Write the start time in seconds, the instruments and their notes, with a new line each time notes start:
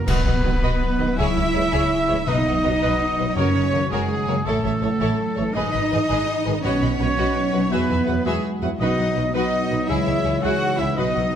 Already playing: harp F#4
0.07 double bass section B1, harp B2, cello section B3, violin section F#4 B4, trumpet B4, viola section B4 D#5, flute B4, oboe B4, concert bass drum, crash
0.25 double bass section B1, harp F#3, viola section B4 D#5, violin section D#5 F#5
0.43 double bass section B1, trombone section D#3 B3, harp G#3, french horn section F#4 B4, viola section B4 D#5, violin section B4 D#5
0.61 double bass section B1, harp F#3, violin section F#4 B4, viola section B4 D#5
0.80 harp D#4
0.98 double bass section B1, trombone section D#3 B3, harp F#3, french horn section F#4 B4, viola section B4 D#5, violin section B4 D#5
1.17 double bass section C#2, harp C#3, cello section E4, violin section G#4 E5, viola section G#4 C#5, flute E5, trumpet E5, oboe E5
1.35 double bass section C#2, harp G#3, viola section G#4 C#5, violin section E5
1.53 double bass section C#2, trombone section E3 G#3, harp A#3, viola section G#4 C#5, french horn section G#4 C#5, violin section C#5
1.72 double bass section C#2, violin section G#4, viola section G#4 C#5
1.91 harp E4
2.07 double bass section C#2, trombone section E3 G#3, french horn section G#4 C#5, viola section G#4 C#5, violin section C#5
2.26 double bass section B1, timpani B2, harp B2, violin section D#4 B4 D#5, cello section D#4, viola section B4, flute D#5, trumpet D#5, oboe D#5
2.46 double bass section B1, harp F#3, violin section B4 F#5, viola section B4
2.64 double bass section B1, trombone section F#3 B3, harp G#3, french horn section F#4 B4, violin section F#4 D#5, viola section B4
2.82 double bass section B1, harp F#3, violin section D#4 B4, viola section B4
3.01 harp D#4
3.18 double bass section B1, trombone section F#3 B3, harp F#3, violin section F#4 D#5, french horn section F#4 B4, viola section B4
3.36 double bass section F#1, timpani F#2, harp F#2, cello section C#4, violin section F#4 A#4 C#5, viola section A#4 C#5, oboe C#5, flute C#5, trumpet C#5
3.54 double bass section F#1, harp C#3, viola section A#4 C#5, violin section C#5 F#5
3.72 double bass section F#1, harp D#3, trombone section F#3 A#3, french horn section F#4 C#5, viola section A#4 C#5, violin section A#4 C#5
3.90 double bass section F#1, harp C#3, cello section G#3, violin section F#4 G#4 A#4, flute G#4, trumpet G#4, oboe G#4, viola section A#4 C#5
4.10 harp F#4
4.27 double bass section F#1, harp C#3, trombone section F#3 A#3, french horn section F#4 C#5, viola section A#4 C#5, violin section A#4 C#5
4.46 double bass section A1, harp A2, cello section A3, violin section E4 A4, trumpet A4, viola section A4 C#5, flute A4, oboe A4
4.63 double bass section A1, harp E3, viola section A4 C#5, violin section C#5 E5
4.82 double bass section A1, trombone section E3 A3, harp F#3, french horn section A4 C#5, viola section A4 C#5, violin section A4 C#5
4.99 double bass section A1, harp E3, violin section E4 A4, viola section A4 C#5
5.18 harp E4
5.35 double bass section A1, harp E3, trombone section E3 A3, violin section A4 C#5, french horn section A4 C#5, viola section A4 C#5
5.54 double bass section G#1, harp G#2, cello section D#4, violin section G#4 D#5, viola section B4, oboe D#5, flute D#5, trumpet D#5
5.72 double bass section G#1, harp D#3, viola section B4, violin section D#5 B5
5.91 double bass section G#1, trombone section D#3 G#3, harp E3, french horn section B4 D#5, violin section B4 G#5, viola section B4
6.08 double bass section G#1, harp D#3, violin section G#4 D#5, viola section B4
6.28 harp G#4
6.45 double bass section G#1, harp D#3, trombone section D#3 G#3, french horn section B4 D#5, viola section B4, violin section B4 G#5
6.63 double bass section B1, timpani B2, harp B2, cello section C#4, violin section F#4 C#5 D#5, viola section F#4 B4, flute C#5, oboe C#5, trumpet C#5
6.81 double bass section B1, harp F#3, viola section F#4 B4, violin section D#5 B5
6.98 double bass section B1, trombone section F#3 B3, harp G#3, viola section F#4 B4, french horn section B4 D#5, violin section B4 F#5
7.16 double bass section B1, harp F#3, violin section F#4 D#5, viola section F#4 B4
7.36 harp D#4
7.52 double bass section B1, trombone section F#3 B3, harp F#3, viola section F#4 B4, violin section B4 F#5, french horn section B4 D#5
7.71 double bass section E2, harp E3, cello section B3, viola section F#4 B4, violin section G#4 B4 E5, trumpet B4, oboe B4, flute B4
7.89 double bass section E2, harp E4, viola section F#4 B4, violin section E5 G#5
8.06 double bass section E2, trombone section F#3 B3, viola section F#4 B4, harp F#4, french horn section G#4 E5, violin section B4 F#5
8.25 double bass section E2, cello section G#3, harp E4, viola section F#4 B4, oboe G#4, flute G#4, trumpet G#4, violin section G#4 E5
8.44 harp F#4
8.61 double bass section E2, trombone section F#3 B3, harp E4, viola section F#4 B4, french horn section G#4 E5, violin section B4 F#5
8.79 double bass section B1, timpani B2, harp B2, trombone section F#3 B3, cello section D#4, french horn section F#4 D#5, viola section F#4 B4, violin section F#4 B4 D#5, oboe D#5, trumpet D#5, flute D#5
8.98 double bass section B1, harp F#3, viola section F#4 B4, violin section D#5 F#5
9.16 double bass section B1, viola section F#4 B4, violin section B4 D#5
9.32 double bass section B1, trombone section F#3 B3, harp F#3, cello section D#4, french horn section F#4 D#5, viola section F#4 B4, violin section F#4 B4 D#5, trumpet D#5, flute D#5, oboe D#5
9.53 harp F#4
9.70 double bass section B1, viola section F#4 B4, violin section B4 D#5
9.88 double bass section C#2, harp C#3, trombone section E3 G#3, cello section E4, violin section E4 G#4 E5, viola section G#4, french horn section G#4 C#5, trumpet E5, flute E5, oboe E5
10.06 double bass section C#2, harp C#4, viola section G#4, violin section C#5 E5
10.25 double bass section C#2, harp D#4, viola section G#4, violin section G#4 C#5
10.42 double bass section C#2, harp C#4, violin section E4 G#4 F#5, cello section F#4, viola section G#4, flute F#5, trumpet F#5, oboe F#5
10.61 harp E4
10.79 double bass section C#2, harp C#4, cello section E4, viola section G#4, violin section G#4 C#5 E5, trumpet E5, oboe E5, flute E5
10.96 double bass section B1, harp B2, trombone section F#3 B3, cello section D#4, french horn section F#4 B4, viola section F#4 B4, violin section F#4 B4 D#5, trumpet D#5, flute D#5, oboe D#5
11.15 double bass section B1, harp F#3, viola section F#4 B4, violin section D#5 F#5
11.32 violin section B4 D#5